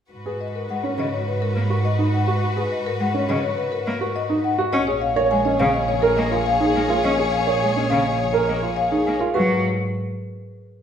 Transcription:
0.11 G#2 F#4 B4
0.26 G#4 B4
0.41 D#5
0.55 A#4
0.69 G#3 F#5
0.84 C#4 C#5
0.98 C#3 D#5
1.14 C#5
1.28 B4
1.42 A#4
1.55 A#3
1.70 F#4 A#4
1.85 D#5
1.99 D#4
2.14 F#5
2.27 F#4
2.56 G#4 B4
2.72 D#5
2.87 A#4
3.00 G#3 F#5
3.14 C#4 C#5
3.29 C#3 D#5
3.43 C#5
3.58 B4
3.72 A#4
3.87 A#3
4.01 F#4 A#4
4.16 D#5
4.30 D#4
4.44 F#5
4.58 F#4
4.73 A#1 C#4 G#4 C#5 D#5
4.87 G#4 C#5
5.02 F5
5.16 A#4 C#5
5.31 G#3 G#5
5.45 C#4 D#5
5.60 C#3 F5
5.74 D#5
5.88 C#5
6.02 A#4
6.17 A#3 D#5
6.32 F4 A#4
6.46 F5
6.60 D#4 G#4
6.74 A#3 G#5
6.89 F4 A#4
7.03 C#4 D#5
7.18 G#4 C#5
7.32 F5
7.47 A#4 C#5
7.61 G#3 G#5
7.75 C#4 D#5
7.90 C#3 F5
8.05 D#5
8.18 C#5
8.33 A#4
8.47 A#3 D#5
8.63 F4 A#4
8.76 F5
8.91 D#4 G#4
9.05 A#3 G#5
9.19 F4 A#4
9.34 G#2 F#3 F#4 B4

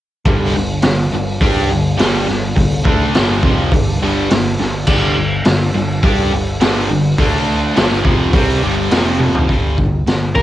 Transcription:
0.25 G1 G2 D3 G3 D4 A4, kick, open hi-hat
0.55 G1 G2 D3
0.82 G1 G2 D3, snare, open hi-hat
1.13 G1 G2 D3
1.41 G2 G3 D4 G4, kick, open hi-hat
1.69 G1 G2 D3
1.98 G1 G2 D3 G3, snare, open hi-hat
2.28 G1 G2 D3, snare
2.57 G1 G2 D3, kick, open hi-hat
2.85 D2 D3 A3 D4, kick
3.14 G1 G2 D3 G3, snare, open hi-hat
3.43 F1 F2 C3 F3, kick
3.72 G1 G2 D3, kick, open hi-hat
4.02 G1 G2 D3 G3
4.30 G1 G2 D3, snare, open hi-hat
4.60 G1 G2 D3, snare
4.87 G1 G2 D3 G3, kick, crash
5.16 G1 G2 D3
5.45 G1 G2 D3, snare, open hi-hat
5.75 G1 G2 D3
6.03 G2 G3 D4 G4, kick, open hi-hat
6.33 G1 G2 D3
6.61 G1 G2 D3 G3, snare, open hi-hat
6.91 G1 G2 D3
7.18 D2 D3 A3 D4 E5, kick, open hi-hat
7.75 G1 G2 D3 G3, snare, open hi-hat
7.92 snare
8.04 F1 F2 C3 F3, kick
8.33 C2 C3 G3 C4, kick, open hi-hat
8.63 G1 G2 D3 G3
8.91 F1 F2 C3 F3 C4 G4, snare, open hi-hat
9.20 high tom
9.35 floor tom
9.47 G1 G2 D3 G3, kick, open hi-hat
9.78 G1 G2 D3, kick
10.07 G1 G2 D3, snare, open hi-hat
10.35 A#1 A#2 F3 A#3 A#4, kick, snare

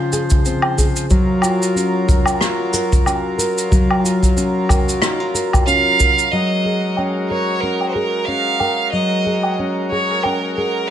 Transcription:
Already playing: C#3 F3 C4 F4 G#4 C5
0.13 G#4, shaker
0.30 kick, shaker
0.45 C4, shaker
0.62 low woodblock
0.78 G#4, kick, shaker
0.96 shaker
1.10 F#3 F4 A#4, kick, shaker
1.42 F4, low woodblock, shaker
1.62 shaker
1.76 C#4, shaker
2.08 A#4, kick, shaker
2.26 low woodblock, shaker
2.41 F4, cross-stick, shaker
2.74 A#4, shaker
2.92 kick, shaker
3.06 C#4, low woodblock, shaker
3.38 A#4, shaker
3.58 shaker
3.71 F#3, kick, shaker
3.91 low woodblock
4.04 F4, shaker
4.23 kick, shaker
4.36 C#4, shaker
4.69 A#4, kick, low woodblock, shaker
4.89 shaker
5.02 D#4, cross-stick, shaker
5.20 F4
5.34 A#4, shaker
5.53 kick, low woodblock, shaker
5.66 C#4 F5, shaker
6.00 A#4, kick, shaker
6.18 shaker
6.31 F#3 G#3 F#4 A#4 D#5
6.65 G#4
6.97 C#4, low woodblock
7.29 A#4 C#5
7.61 C#4 A#4
7.81 low woodblock
7.89 C5
7.93 G#4 A#4
8.25 C#4 F5
8.60 A#4, low woodblock
8.92 F#3 D#5
9.26 G#4
9.43 low woodblock
9.59 C#4
9.90 G#4 C#5
10.11 A#4
10.23 C#4 A#4, low woodblock
10.55 G#4 A#4

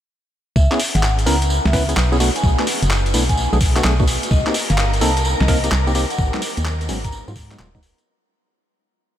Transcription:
0.56 C#2 E5, kick, tambourine
0.72 B3 C#4 E4 G#4, clap, tambourine
0.80 open hi-hat, tambourine
0.95 G#1 F#5, snare, closed hi-hat, tambourine
1.03 clap, tambourine
1.19 closed hi-hat, tambourine
1.26 C#2 B3 C#4 E4 A#4 A#5, open hi-hat, tambourine
1.42 closed hi-hat, tambourine
1.50 tambourine
1.65 C#2 E5, snare, tambourine
1.73 B3 C#4 E4 B4, kick, snare, open hi-hat, tambourine
1.89 B3 C#4 E4 G#4, closed hi-hat, tambourine
1.97 B1, clap, tambourine
2.12 B3 C#4 E4 G#4, tambourine
2.20 A3 B3 D4 F#4, open hi-hat, tambourine
2.36 G#5, closed hi-hat, tambourine
2.44 B1, kick, tambourine
2.59 A3 B3 D4 F#4, clap, tambourine
2.67 open hi-hat, tambourine
2.83 F#1, closed hi-hat, tambourine
2.90 clap, tambourine
3.06 closed hi-hat, tambourine
3.14 B1 A3 B3 D4 E4, open hi-hat, tambourine
3.29 G#5, kick, closed hi-hat, tambourine
3.37 tambourine
3.53 B1 A3 B3 D4 G#4, tambourine
3.61 kick, open hi-hat, tambourine
3.76 A3 B3 D4 F#4, clap, closed hi-hat, tambourine
3.84 B1 A3 B3 D4 G#4, clap, tambourine
4.00 A3 B3 D4 F#4, kick, tambourine
4.08 open hi-hat, tambourine
4.23 closed hi-hat, tambourine
4.31 C2 A#4 D#5 A#5, kick, tambourine
4.46 A#3 C4 D#4 G4, clap, tambourine
4.54 open hi-hat, tambourine
4.70 G1 F5, snare, closed hi-hat, tambourine
4.78 clap, tambourine
4.93 closed hi-hat, tambourine
5.01 C2 A#3 C4 D#4 A4 A5, open hi-hat, tambourine
5.17 closed hi-hat, tambourine
5.25 tambourine
5.40 C2 D#5, snare, tambourine
5.48 A#3 C4 D#4 A#4, kick, snare, open hi-hat, tambourine
5.64 A#3 C4 D#4 G4, closed hi-hat, tambourine
5.72 C2, clap
5.87 A#3 C4 D#4 G4, tambourine
5.95 A#3 C4 D#4 G4, open hi-hat, tambourine
6.10 F#5, closed hi-hat, tambourine
6.18 G#1, kick, tambourine
6.34 F#3 G#3 B3 D#4, clap, tambourine
6.42 open hi-hat, tambourine
6.57 D#2, closed hi-hat, tambourine
6.65 clap, tambourine
6.81 closed hi-hat, tambourine
6.89 G#1 F#3 G#3 B3 C#4, open hi-hat, tambourine
7.04 A#5, kick, closed hi-hat, tambourine
7.12 tambourine
7.28 G#2 F#3 G#3 B3 F4, tambourine
7.36 kick, open hi-hat, tambourine
7.51 F#3 G#3 B3 D#4, clap, closed hi-hat, tambourine
7.59 D#1 F#3 G#3 B3 F4, clap, tambourine
7.75 F#3 G#3 B3 D#4, kick, tambourine
7.83 open hi-hat, tambourine
7.98 closed hi-hat, tambourine

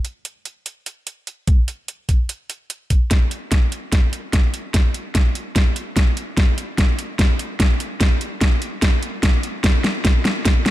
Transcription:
0.05 closed hi-hat
0.25 closed hi-hat
0.45 closed hi-hat
0.66 closed hi-hat
0.86 closed hi-hat
1.07 closed hi-hat
1.27 closed hi-hat
1.48 kick, closed hi-hat
1.68 closed hi-hat
1.88 closed hi-hat
2.09 kick, closed hi-hat
2.29 closed hi-hat
2.50 closed hi-hat
2.70 closed hi-hat
2.90 kick, closed hi-hat
3.11 kick, snare, closed hi-hat
3.31 closed hi-hat
3.52 kick, snare, closed hi-hat
3.72 closed hi-hat
3.92 kick, snare, closed hi-hat
4.13 closed hi-hat
4.33 kick, snare, closed hi-hat
4.54 closed hi-hat
4.74 kick, snare, closed hi-hat
4.94 closed hi-hat
5.15 kick, snare, closed hi-hat
5.35 closed hi-hat
5.56 kick, snare, closed hi-hat
5.76 closed hi-hat
5.96 kick, snare, closed hi-hat
6.17 closed hi-hat
6.37 kick, snare, closed hi-hat
6.58 closed hi-hat
6.78 kick, snare, closed hi-hat
6.99 closed hi-hat
7.19 kick, snare, closed hi-hat
7.39 closed hi-hat
7.60 kick, snare, closed hi-hat
7.80 closed hi-hat
8.01 kick, snare, closed hi-hat
8.21 closed hi-hat
8.41 kick, snare, closed hi-hat
8.62 closed hi-hat
8.82 kick, snare, closed hi-hat
9.03 closed hi-hat
9.23 kick, snare, closed hi-hat
9.43 closed hi-hat
9.64 kick, snare, closed hi-hat
9.84 snare, closed hi-hat
10.05 kick, snare, closed hi-hat
10.25 snare, closed hi-hat
10.45 kick, snare, closed hi-hat
10.66 snare, closed hi-hat

